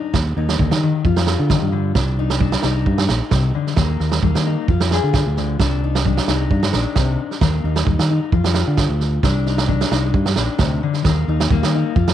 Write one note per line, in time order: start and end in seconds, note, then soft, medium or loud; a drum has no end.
0.00 0.12 D4 medium
0.00 0.12 D#4 medium
0.13 0.33 D#2 loud
0.13 0.55 D#3 medium
0.13 muted steel-string acoustic guitar stroke medium
0.13 kick medium
0.13 snare medium
0.37 0.56 D#2 medium
0.37 1.03 D#4 medium
0.49 snare medium
0.59 0.70 D#2 medium
0.59 0.82 D3 medium
0.59 kick medium
0.71 0.91 D#3 medium
0.71 snare medium
0.83 1.05 D#3 medium
1.05 1.35 F2 loud
1.05 1.46 F3 medium
1.05 1.94 F4 medium
1.05 kick medium
1.17 snare medium
1.27 snare medium
1.39 1.59 D3 loud
1.50 1.72 D#3 medium
1.50 kick medium
1.50 snare medium
1.62 1.91 G2 medium
1.72 1.95 D3 medium
1.95 2.55 C2 medium
1.95 2.37 C3 medium
1.95 2.40 D4 medium
1.95 kick loud
1.95 snare medium
2.19 2.63 D#4 medium
2.30 snare medium
2.40 2.82 G3 medium
2.40 3.09 D4 medium
2.40 kick medium
2.52 snare medium
2.63 2.84 C2 medium
2.63 3.75 D#4 medium
2.63 snare medium
2.86 3.06 G2 loud
2.86 3.28 G2 medium
2.86 kick medium
2.98 snare medium
3.09 3.20 A#1 medium
3.09 snare medium
3.31 3.52 C2 medium
3.31 3.54 C3 medium
3.31 kick medium
3.31 snare medium
3.55 3.77 D3 medium
3.67 snare soft
3.77 3.97 D#2 loud
3.77 4.19 D#3 medium
3.77 4.22 A#3 medium
3.77 kick medium
3.77 snare medium
4.00 4.20 D#2 medium
4.00 snare soft
4.12 snare medium
4.23 4.34 D#2 medium
4.23 4.64 G3 medium
4.23 4.69 A#3 medium
4.23 kick medium
4.35 4.55 D#3 medium
4.35 snare medium
4.47 4.67 D#4 medium
4.68 4.99 F2 medium
4.68 5.10 F3 medium
4.68 5.58 F4 medium
4.68 kick medium
4.80 snare medium
4.91 5.58 G#4 medium
4.91 snare medium
5.04 5.23 D3 medium
5.13 kick medium
5.13 snare medium
5.26 5.55 D2 medium
5.37 5.60 D3 medium
5.37 snare soft
5.59 6.19 C2 loud
5.59 6.01 C3 medium
5.59 6.05 D4 medium
5.59 kick medium
5.59 snare medium
5.84 6.27 D#4 medium
5.95 snare medium
6.05 6.47 G3 medium
6.05 6.74 D4 medium
6.05 kick medium
6.17 snare medium
6.28 6.47 C2 medium
6.28 7.39 D#4 medium
6.28 snare medium
6.51 6.70 G2 loud
6.51 6.92 G2 medium
6.51 kick medium
6.63 snare medium
6.73 6.84 A#1 medium
6.73 7.40 D4 medium
6.73 snare medium
6.95 7.16 C2 medium
6.95 7.19 C3 medium
6.95 kick medium
6.95 snare medium
7.31 snare soft
7.41 7.61 D#2 loud
7.41 7.83 D#3 medium
7.41 7.87 A#3 medium
7.41 kick medium
7.41 snare medium
7.64 7.84 D#2 medium
7.64 8.09 D#4 medium
7.76 snare medium
7.87 7.97 D#2 medium
7.87 8.28 G3 medium
7.87 kick medium
7.99 8.19 D#3 medium
7.99 snare medium
8.10 8.30 D#4 medium
8.32 8.63 F2 loud
8.32 8.74 F3 medium
8.32 9.21 F4 medium
8.32 kick medium
8.44 snare medium
8.54 snare medium
8.67 8.87 D3 loud
8.77 muted steel-string acoustic guitar stroke medium
8.77 kick medium
8.77 snare medium
8.89 9.18 D2 medium
9.00 snare soft
9.23 9.82 C2 loud
9.23 9.64 C3 medium
9.23 9.68 D4 medium
9.23 kick medium
9.23 snare medium
9.46 9.90 D#4 medium
9.46 snare soft
9.58 snare medium
9.68 10.10 G3 medium
9.68 10.37 D4 medium
9.68 kick medium
9.81 snare medium
9.91 10.11 C2 medium
9.91 11.03 D#4 medium
9.91 snare medium
10.14 10.34 G2 loud
10.14 10.56 G2 medium
10.14 kick medium
10.26 snare medium
10.36 10.47 A#1 medium
10.36 11.03 D4 medium
10.36 snare medium
10.59 10.79 D2 medium
10.59 10.82 C3 medium
10.59 kick medium
10.59 snare medium
10.83 11.05 D3 medium
10.93 snare soft
11.04 11.25 D#2 medium
11.04 11.47 D#3 medium
11.04 11.50 A#3 medium
11.04 kick medium
11.04 snare medium
11.28 11.48 D#2 medium
11.28 11.74 D#4 medium
11.40 snare medium
11.50 11.61 D#2 medium
11.50 11.92 G3 medium
11.50 11.97 A#3 medium
11.50 kick loud
11.62 11.82 D#3 medium
11.62 snare medium
11.75 11.94 D#4 medium
11.96 12.14 F2 loud
11.96 12.14 F3 medium
11.96 12.14 F4 medium
11.96 kick medium
12.08 snare medium